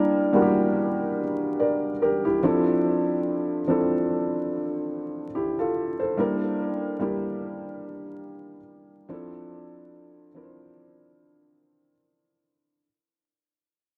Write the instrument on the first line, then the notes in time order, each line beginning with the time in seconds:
felt piano
Already playing: G3 A#3 D4 E4 A#4
0.33 G3 A#3 D4 E4 F#4
0.42 G4
1.60 A#4 D5
2.02 G4 A#4
2.25 E4 G4
2.43 F3 C4 D4 E4 A4
3.67 F3 C4 D4 E4 A4
5.35 E4 G4
5.59 F4 A4
5.99 A4 C5
6.17 G3 A#3 D4 E4 A#4
7.00 G3 A#3 D4 E4 G4
9.09 F3 C4 D4 E4 A4
10.34 F3 C4 D4 E4 A#4
10.43 C5